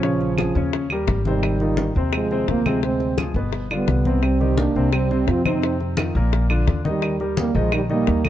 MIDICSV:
0, 0, Header, 1, 6, 480
1, 0, Start_track
1, 0, Key_signature, -3, "major"
1, 0, Tempo, 349854
1, 43, Time_signature, 4, 2, 24, 8
1, 11375, End_track
2, 0, Start_track
2, 0, Title_t, "Grand piano"
2, 0, Program_c, 0, 0
2, 49, Note_on_c, 0, 61, 57
2, 50, Note_on_c, 0, 49, 60
2, 52, Note_on_c, 0, 73, 63
2, 439, Note_off_c, 0, 61, 0
2, 441, Note_off_c, 0, 49, 0
2, 442, Note_off_c, 0, 73, 0
2, 522, Note_on_c, 0, 53, 50
2, 532, Note_on_c, 0, 65, 53
2, 538, Note_on_c, 0, 68, 58
2, 719, Note_off_c, 0, 53, 0
2, 725, Note_off_c, 0, 65, 0
2, 728, Note_off_c, 0, 68, 0
2, 765, Note_on_c, 0, 49, 62
2, 772, Note_on_c, 0, 61, 67
2, 777, Note_on_c, 0, 73, 64
2, 1157, Note_off_c, 0, 49, 0
2, 1161, Note_off_c, 0, 61, 0
2, 1165, Note_off_c, 0, 73, 0
2, 1263, Note_on_c, 0, 55, 58
2, 1266, Note_on_c, 0, 67, 58
2, 1269, Note_on_c, 0, 70, 60
2, 1648, Note_off_c, 0, 55, 0
2, 1650, Note_off_c, 0, 67, 0
2, 1651, Note_off_c, 0, 70, 0
2, 1738, Note_on_c, 0, 48, 69
2, 1745, Note_on_c, 0, 60, 61
2, 1750, Note_on_c, 0, 72, 75
2, 2125, Note_off_c, 0, 48, 0
2, 2129, Note_off_c, 0, 60, 0
2, 2132, Note_off_c, 0, 72, 0
2, 2211, Note_on_c, 0, 51, 59
2, 2213, Note_on_c, 0, 63, 65
2, 2215, Note_on_c, 0, 65, 58
2, 2601, Note_off_c, 0, 51, 0
2, 2602, Note_off_c, 0, 63, 0
2, 2603, Note_off_c, 0, 65, 0
2, 2697, Note_on_c, 0, 48, 59
2, 2701, Note_on_c, 0, 72, 67
2, 2704, Note_on_c, 0, 60, 71
2, 3084, Note_off_c, 0, 48, 0
2, 3087, Note_off_c, 0, 72, 0
2, 3088, Note_off_c, 0, 60, 0
2, 3177, Note_on_c, 0, 48, 62
2, 3177, Note_on_c, 0, 60, 70
2, 3189, Note_on_c, 0, 72, 73
2, 3564, Note_off_c, 0, 48, 0
2, 3564, Note_off_c, 0, 60, 0
2, 3571, Note_off_c, 0, 72, 0
2, 3649, Note_on_c, 0, 60, 70
2, 3650, Note_on_c, 0, 48, 74
2, 3654, Note_on_c, 0, 72, 65
2, 3843, Note_off_c, 0, 60, 0
2, 3844, Note_off_c, 0, 48, 0
2, 3846, Note_off_c, 0, 72, 0
2, 3883, Note_on_c, 0, 48, 57
2, 3896, Note_on_c, 0, 72, 55
2, 3899, Note_on_c, 0, 60, 53
2, 4276, Note_off_c, 0, 48, 0
2, 4284, Note_off_c, 0, 72, 0
2, 4285, Note_off_c, 0, 60, 0
2, 4365, Note_on_c, 0, 53, 53
2, 4376, Note_on_c, 0, 68, 52
2, 4378, Note_on_c, 0, 65, 57
2, 4560, Note_off_c, 0, 53, 0
2, 4567, Note_off_c, 0, 68, 0
2, 4568, Note_off_c, 0, 65, 0
2, 4605, Note_on_c, 0, 47, 60
2, 4612, Note_on_c, 0, 59, 64
2, 4614, Note_on_c, 0, 71, 59
2, 4997, Note_off_c, 0, 47, 0
2, 5001, Note_off_c, 0, 59, 0
2, 5002, Note_off_c, 0, 71, 0
2, 5088, Note_on_c, 0, 50, 59
2, 5095, Note_on_c, 0, 62, 57
2, 5096, Note_on_c, 0, 65, 57
2, 5479, Note_off_c, 0, 50, 0
2, 5483, Note_off_c, 0, 62, 0
2, 5484, Note_off_c, 0, 65, 0
2, 5571, Note_on_c, 0, 48, 71
2, 5580, Note_on_c, 0, 60, 64
2, 5583, Note_on_c, 0, 72, 59
2, 5961, Note_off_c, 0, 48, 0
2, 5966, Note_off_c, 0, 60, 0
2, 5968, Note_off_c, 0, 72, 0
2, 6042, Note_on_c, 0, 51, 66
2, 6047, Note_on_c, 0, 63, 57
2, 6051, Note_on_c, 0, 67, 63
2, 6436, Note_off_c, 0, 51, 0
2, 6438, Note_off_c, 0, 63, 0
2, 6441, Note_off_c, 0, 67, 0
2, 6532, Note_on_c, 0, 48, 73
2, 6535, Note_on_c, 0, 72, 66
2, 6537, Note_on_c, 0, 60, 69
2, 6922, Note_off_c, 0, 48, 0
2, 6923, Note_off_c, 0, 72, 0
2, 6924, Note_off_c, 0, 60, 0
2, 7009, Note_on_c, 0, 48, 71
2, 7016, Note_on_c, 0, 60, 63
2, 7017, Note_on_c, 0, 72, 70
2, 7400, Note_off_c, 0, 48, 0
2, 7404, Note_off_c, 0, 60, 0
2, 7404, Note_off_c, 0, 72, 0
2, 7486, Note_on_c, 0, 48, 69
2, 7486, Note_on_c, 0, 60, 68
2, 7493, Note_on_c, 0, 72, 72
2, 7681, Note_off_c, 0, 48, 0
2, 7681, Note_off_c, 0, 60, 0
2, 7685, Note_off_c, 0, 72, 0
2, 7736, Note_on_c, 0, 48, 58
2, 7743, Note_on_c, 0, 60, 60
2, 7745, Note_on_c, 0, 72, 51
2, 8124, Note_off_c, 0, 48, 0
2, 8128, Note_off_c, 0, 60, 0
2, 8129, Note_off_c, 0, 72, 0
2, 8211, Note_on_c, 0, 63, 55
2, 8214, Note_on_c, 0, 51, 55
2, 8221, Note_on_c, 0, 65, 51
2, 8404, Note_off_c, 0, 63, 0
2, 8406, Note_off_c, 0, 51, 0
2, 8410, Note_off_c, 0, 65, 0
2, 8457, Note_on_c, 0, 46, 65
2, 8459, Note_on_c, 0, 70, 67
2, 8464, Note_on_c, 0, 58, 67
2, 8844, Note_off_c, 0, 46, 0
2, 8845, Note_off_c, 0, 70, 0
2, 8848, Note_off_c, 0, 58, 0
2, 8916, Note_on_c, 0, 50, 64
2, 8925, Note_on_c, 0, 62, 66
2, 8926, Note_on_c, 0, 65, 65
2, 9312, Note_off_c, 0, 50, 0
2, 9317, Note_off_c, 0, 62, 0
2, 9318, Note_off_c, 0, 65, 0
2, 9393, Note_on_c, 0, 51, 65
2, 9399, Note_on_c, 0, 63, 64
2, 9408, Note_on_c, 0, 75, 73
2, 9790, Note_off_c, 0, 51, 0
2, 9793, Note_off_c, 0, 63, 0
2, 9799, Note_off_c, 0, 75, 0
2, 9886, Note_on_c, 0, 67, 58
2, 9887, Note_on_c, 0, 55, 59
2, 9890, Note_on_c, 0, 70, 59
2, 10277, Note_off_c, 0, 67, 0
2, 10278, Note_off_c, 0, 55, 0
2, 10280, Note_off_c, 0, 70, 0
2, 10360, Note_on_c, 0, 51, 72
2, 10361, Note_on_c, 0, 63, 68
2, 10366, Note_on_c, 0, 75, 72
2, 10754, Note_off_c, 0, 51, 0
2, 10754, Note_off_c, 0, 63, 0
2, 10757, Note_off_c, 0, 75, 0
2, 10833, Note_on_c, 0, 51, 67
2, 10840, Note_on_c, 0, 63, 72
2, 10846, Note_on_c, 0, 75, 68
2, 11229, Note_off_c, 0, 51, 0
2, 11234, Note_off_c, 0, 63, 0
2, 11237, Note_off_c, 0, 75, 0
2, 11321, Note_on_c, 0, 51, 70
2, 11323, Note_on_c, 0, 63, 62
2, 11375, Note_off_c, 0, 51, 0
2, 11375, Note_off_c, 0, 63, 0
2, 11375, End_track
3, 0, Start_track
3, 0, Title_t, "French horn"
3, 0, Program_c, 1, 60
3, 0, Note_on_c, 1, 53, 69
3, 1200, Note_off_c, 1, 53, 0
3, 1744, Note_on_c, 1, 55, 66
3, 2638, Note_off_c, 1, 55, 0
3, 2939, Note_on_c, 1, 56, 78
3, 3425, Note_on_c, 1, 58, 82
3, 3446, Note_off_c, 1, 56, 0
3, 3668, Note_on_c, 1, 56, 69
3, 3688, Note_off_c, 1, 58, 0
3, 3895, Note_off_c, 1, 56, 0
3, 3901, Note_on_c, 1, 60, 89
3, 4339, Note_off_c, 1, 60, 0
3, 5171, Note_on_c, 1, 59, 72
3, 5815, Note_on_c, 1, 60, 81
3, 5835, Note_off_c, 1, 59, 0
3, 6299, Note_on_c, 1, 62, 81
3, 6320, Note_off_c, 1, 60, 0
3, 6758, Note_off_c, 1, 62, 0
3, 6766, Note_on_c, 1, 60, 89
3, 7254, Note_on_c, 1, 65, 83
3, 7274, Note_off_c, 1, 60, 0
3, 7481, Note_off_c, 1, 65, 0
3, 7489, Note_on_c, 1, 63, 71
3, 7932, Note_off_c, 1, 63, 0
3, 9433, Note_on_c, 1, 55, 71
3, 9864, Note_off_c, 1, 55, 0
3, 10138, Note_on_c, 1, 58, 87
3, 10390, Note_on_c, 1, 56, 73
3, 10410, Note_off_c, 1, 58, 0
3, 10615, Note_off_c, 1, 56, 0
3, 10627, Note_on_c, 1, 55, 75
3, 10729, Note_off_c, 1, 55, 0
3, 10869, Note_on_c, 1, 58, 78
3, 11360, Note_off_c, 1, 58, 0
3, 11375, End_track
4, 0, Start_track
4, 0, Title_t, "Trombone"
4, 0, Program_c, 2, 57
4, 0, Note_on_c, 2, 49, 63
4, 1187, Note_off_c, 2, 49, 0
4, 1747, Note_on_c, 2, 51, 58
4, 2639, Note_off_c, 2, 51, 0
4, 2946, Note_on_c, 2, 53, 66
4, 3417, Note_off_c, 2, 53, 0
4, 3417, Note_on_c, 2, 53, 66
4, 3659, Note_off_c, 2, 53, 0
4, 3659, Note_on_c, 2, 53, 62
4, 3882, Note_off_c, 2, 53, 0
4, 3891, Note_on_c, 2, 56, 75
4, 4333, Note_off_c, 2, 56, 0
4, 5147, Note_on_c, 2, 55, 61
4, 5790, Note_off_c, 2, 55, 0
4, 5790, Note_on_c, 2, 55, 63
4, 6270, Note_on_c, 2, 58, 61
4, 6291, Note_off_c, 2, 55, 0
4, 6752, Note_off_c, 2, 58, 0
4, 6760, Note_on_c, 2, 55, 64
4, 7235, Note_on_c, 2, 60, 70
4, 7256, Note_off_c, 2, 55, 0
4, 7479, Note_off_c, 2, 60, 0
4, 7497, Note_on_c, 2, 60, 65
4, 7936, Note_off_c, 2, 60, 0
4, 9421, Note_on_c, 2, 51, 64
4, 9858, Note_off_c, 2, 51, 0
4, 10150, Note_on_c, 2, 55, 67
4, 10369, Note_on_c, 2, 53, 65
4, 10390, Note_off_c, 2, 55, 0
4, 10599, Note_off_c, 2, 53, 0
4, 10607, Note_on_c, 2, 51, 62
4, 10714, Note_off_c, 2, 51, 0
4, 10839, Note_on_c, 2, 55, 79
4, 11318, Note_on_c, 2, 50, 66
4, 11339, Note_off_c, 2, 55, 0
4, 11375, Note_off_c, 2, 50, 0
4, 11375, End_track
5, 0, Start_track
5, 0, Title_t, "Upright bass"
5, 0, Program_c, 3, 32
5, 0, Note_on_c, 3, 34, 76
5, 674, Note_off_c, 3, 34, 0
5, 755, Note_on_c, 3, 39, 84
5, 1428, Note_off_c, 3, 39, 0
5, 1478, Note_on_c, 3, 32, 84
5, 2601, Note_off_c, 3, 32, 0
5, 2686, Note_on_c, 3, 39, 83
5, 3354, Note_off_c, 3, 39, 0
5, 3402, Note_on_c, 3, 38, 77
5, 4523, Note_off_c, 3, 38, 0
5, 4586, Note_on_c, 3, 31, 82
5, 5263, Note_off_c, 3, 31, 0
5, 5313, Note_on_c, 3, 36, 71
5, 6438, Note_off_c, 3, 36, 0
5, 6520, Note_on_c, 3, 36, 73
5, 7190, Note_off_c, 3, 36, 0
5, 7234, Note_on_c, 3, 41, 77
5, 8359, Note_off_c, 3, 41, 0
5, 8437, Note_on_c, 3, 34, 83
5, 9109, Note_off_c, 3, 34, 0
5, 9153, Note_on_c, 3, 39, 78
5, 10278, Note_off_c, 3, 39, 0
5, 10353, Note_on_c, 3, 34, 85
5, 11026, Note_off_c, 3, 34, 0
5, 11081, Note_on_c, 3, 39, 75
5, 11375, Note_off_c, 3, 39, 0
5, 11375, End_track
6, 0, Start_track
6, 0, Title_t, "Drums"
6, 43, Note_on_c, 9, 63, 27
6, 44, Note_on_c, 9, 60, 56
6, 181, Note_off_c, 9, 63, 0
6, 182, Note_off_c, 9, 60, 0
6, 282, Note_on_c, 9, 63, 29
6, 298, Note_on_c, 9, 60, 26
6, 419, Note_off_c, 9, 63, 0
6, 435, Note_off_c, 9, 60, 0
6, 516, Note_on_c, 9, 75, 56
6, 527, Note_on_c, 9, 63, 76
6, 528, Note_on_c, 9, 60, 47
6, 654, Note_off_c, 9, 75, 0
6, 664, Note_off_c, 9, 63, 0
6, 665, Note_off_c, 9, 60, 0
6, 763, Note_on_c, 9, 63, 31
6, 777, Note_on_c, 9, 60, 27
6, 900, Note_off_c, 9, 63, 0
6, 914, Note_off_c, 9, 60, 0
6, 1006, Note_on_c, 9, 60, 62
6, 1007, Note_on_c, 9, 63, 27
6, 1143, Note_off_c, 9, 60, 0
6, 1144, Note_off_c, 9, 63, 0
6, 1233, Note_on_c, 9, 63, 31
6, 1236, Note_on_c, 9, 75, 55
6, 1242, Note_on_c, 9, 60, 29
6, 1370, Note_off_c, 9, 63, 0
6, 1373, Note_off_c, 9, 75, 0
6, 1379, Note_off_c, 9, 60, 0
6, 1475, Note_on_c, 9, 63, 72
6, 1478, Note_on_c, 9, 60, 61
6, 1478, Note_on_c, 9, 61, 75
6, 1612, Note_off_c, 9, 63, 0
6, 1615, Note_off_c, 9, 60, 0
6, 1615, Note_off_c, 9, 61, 0
6, 1720, Note_on_c, 9, 63, 66
6, 1857, Note_off_c, 9, 63, 0
6, 1960, Note_on_c, 9, 63, 30
6, 1960, Note_on_c, 9, 75, 49
6, 1965, Note_on_c, 9, 60, 57
6, 2097, Note_off_c, 9, 63, 0
6, 2097, Note_off_c, 9, 75, 0
6, 2102, Note_off_c, 9, 60, 0
6, 2198, Note_on_c, 9, 63, 31
6, 2335, Note_off_c, 9, 63, 0
6, 2430, Note_on_c, 9, 63, 86
6, 2440, Note_on_c, 9, 60, 47
6, 2567, Note_off_c, 9, 63, 0
6, 2578, Note_off_c, 9, 60, 0
6, 2674, Note_on_c, 9, 63, 31
6, 2812, Note_off_c, 9, 63, 0
6, 2917, Note_on_c, 9, 60, 62
6, 2922, Note_on_c, 9, 75, 56
6, 2923, Note_on_c, 9, 63, 28
6, 3054, Note_off_c, 9, 60, 0
6, 3060, Note_off_c, 9, 63, 0
6, 3060, Note_off_c, 9, 75, 0
6, 3169, Note_on_c, 9, 63, 26
6, 3306, Note_off_c, 9, 63, 0
6, 3405, Note_on_c, 9, 60, 55
6, 3405, Note_on_c, 9, 61, 72
6, 3411, Note_on_c, 9, 63, 29
6, 3542, Note_off_c, 9, 60, 0
6, 3542, Note_off_c, 9, 61, 0
6, 3548, Note_off_c, 9, 63, 0
6, 3647, Note_on_c, 9, 75, 55
6, 3649, Note_on_c, 9, 63, 75
6, 3784, Note_off_c, 9, 75, 0
6, 3786, Note_off_c, 9, 63, 0
6, 3880, Note_on_c, 9, 63, 32
6, 3883, Note_on_c, 9, 60, 54
6, 4017, Note_off_c, 9, 63, 0
6, 4020, Note_off_c, 9, 60, 0
6, 4116, Note_on_c, 9, 60, 29
6, 4120, Note_on_c, 9, 63, 26
6, 4254, Note_off_c, 9, 60, 0
6, 4257, Note_off_c, 9, 63, 0
6, 4357, Note_on_c, 9, 60, 49
6, 4362, Note_on_c, 9, 63, 82
6, 4367, Note_on_c, 9, 75, 49
6, 4494, Note_off_c, 9, 60, 0
6, 4499, Note_off_c, 9, 63, 0
6, 4504, Note_off_c, 9, 75, 0
6, 4595, Note_on_c, 9, 60, 30
6, 4610, Note_on_c, 9, 63, 31
6, 4732, Note_off_c, 9, 60, 0
6, 4747, Note_off_c, 9, 63, 0
6, 4837, Note_on_c, 9, 60, 60
6, 4839, Note_on_c, 9, 63, 25
6, 4974, Note_off_c, 9, 60, 0
6, 4977, Note_off_c, 9, 63, 0
6, 5085, Note_on_c, 9, 63, 30
6, 5089, Note_on_c, 9, 60, 30
6, 5090, Note_on_c, 9, 75, 60
6, 5222, Note_off_c, 9, 63, 0
6, 5226, Note_off_c, 9, 60, 0
6, 5227, Note_off_c, 9, 75, 0
6, 5321, Note_on_c, 9, 60, 57
6, 5321, Note_on_c, 9, 61, 70
6, 5324, Note_on_c, 9, 63, 68
6, 5459, Note_off_c, 9, 60, 0
6, 5459, Note_off_c, 9, 61, 0
6, 5461, Note_off_c, 9, 63, 0
6, 5562, Note_on_c, 9, 63, 70
6, 5699, Note_off_c, 9, 63, 0
6, 5799, Note_on_c, 9, 60, 50
6, 5804, Note_on_c, 9, 75, 47
6, 5807, Note_on_c, 9, 63, 32
6, 5936, Note_off_c, 9, 60, 0
6, 5942, Note_off_c, 9, 75, 0
6, 5944, Note_off_c, 9, 63, 0
6, 6049, Note_on_c, 9, 63, 29
6, 6187, Note_off_c, 9, 63, 0
6, 6275, Note_on_c, 9, 60, 47
6, 6278, Note_on_c, 9, 63, 79
6, 6412, Note_off_c, 9, 60, 0
6, 6415, Note_off_c, 9, 63, 0
6, 6532, Note_on_c, 9, 63, 29
6, 6669, Note_off_c, 9, 63, 0
6, 6758, Note_on_c, 9, 60, 54
6, 6765, Note_on_c, 9, 63, 25
6, 6766, Note_on_c, 9, 75, 62
6, 6895, Note_off_c, 9, 60, 0
6, 6903, Note_off_c, 9, 63, 0
6, 6903, Note_off_c, 9, 75, 0
6, 7011, Note_on_c, 9, 63, 28
6, 7148, Note_off_c, 9, 63, 0
6, 7241, Note_on_c, 9, 60, 59
6, 7241, Note_on_c, 9, 61, 67
6, 7251, Note_on_c, 9, 63, 29
6, 7378, Note_off_c, 9, 60, 0
6, 7378, Note_off_c, 9, 61, 0
6, 7388, Note_off_c, 9, 63, 0
6, 7484, Note_on_c, 9, 63, 70
6, 7485, Note_on_c, 9, 75, 60
6, 7621, Note_off_c, 9, 63, 0
6, 7622, Note_off_c, 9, 75, 0
6, 7717, Note_on_c, 9, 63, 30
6, 7730, Note_on_c, 9, 60, 58
6, 7854, Note_off_c, 9, 63, 0
6, 7867, Note_off_c, 9, 60, 0
6, 7960, Note_on_c, 9, 63, 29
6, 7967, Note_on_c, 9, 60, 27
6, 8098, Note_off_c, 9, 63, 0
6, 8104, Note_off_c, 9, 60, 0
6, 8191, Note_on_c, 9, 63, 83
6, 8202, Note_on_c, 9, 75, 56
6, 8206, Note_on_c, 9, 60, 45
6, 8328, Note_off_c, 9, 63, 0
6, 8339, Note_off_c, 9, 75, 0
6, 8343, Note_off_c, 9, 60, 0
6, 8442, Note_on_c, 9, 63, 28
6, 8455, Note_on_c, 9, 60, 28
6, 8579, Note_off_c, 9, 63, 0
6, 8592, Note_off_c, 9, 60, 0
6, 8684, Note_on_c, 9, 60, 65
6, 8684, Note_on_c, 9, 63, 28
6, 8821, Note_off_c, 9, 60, 0
6, 8821, Note_off_c, 9, 63, 0
6, 8917, Note_on_c, 9, 75, 56
6, 8919, Note_on_c, 9, 63, 27
6, 8920, Note_on_c, 9, 60, 28
6, 9054, Note_off_c, 9, 75, 0
6, 9056, Note_off_c, 9, 63, 0
6, 9058, Note_off_c, 9, 60, 0
6, 9158, Note_on_c, 9, 60, 57
6, 9158, Note_on_c, 9, 61, 71
6, 9159, Note_on_c, 9, 63, 67
6, 9295, Note_off_c, 9, 60, 0
6, 9295, Note_off_c, 9, 61, 0
6, 9297, Note_off_c, 9, 63, 0
6, 9400, Note_on_c, 9, 63, 72
6, 9537, Note_off_c, 9, 63, 0
6, 9634, Note_on_c, 9, 60, 58
6, 9641, Note_on_c, 9, 75, 51
6, 9646, Note_on_c, 9, 63, 28
6, 9772, Note_off_c, 9, 60, 0
6, 9778, Note_off_c, 9, 75, 0
6, 9783, Note_off_c, 9, 63, 0
6, 9876, Note_on_c, 9, 63, 29
6, 10013, Note_off_c, 9, 63, 0
6, 10114, Note_on_c, 9, 63, 91
6, 10115, Note_on_c, 9, 60, 55
6, 10251, Note_off_c, 9, 63, 0
6, 10252, Note_off_c, 9, 60, 0
6, 10352, Note_on_c, 9, 63, 34
6, 10489, Note_off_c, 9, 63, 0
6, 10594, Note_on_c, 9, 60, 54
6, 10594, Note_on_c, 9, 75, 65
6, 10596, Note_on_c, 9, 63, 26
6, 10731, Note_off_c, 9, 75, 0
6, 10732, Note_off_c, 9, 60, 0
6, 10733, Note_off_c, 9, 63, 0
6, 10833, Note_on_c, 9, 63, 31
6, 10970, Note_off_c, 9, 63, 0
6, 11071, Note_on_c, 9, 63, 29
6, 11076, Note_on_c, 9, 60, 57
6, 11076, Note_on_c, 9, 61, 78
6, 11209, Note_off_c, 9, 63, 0
6, 11213, Note_off_c, 9, 60, 0
6, 11213, Note_off_c, 9, 61, 0
6, 11313, Note_on_c, 9, 75, 61
6, 11317, Note_on_c, 9, 63, 72
6, 11375, Note_off_c, 9, 63, 0
6, 11375, Note_off_c, 9, 75, 0
6, 11375, End_track
0, 0, End_of_file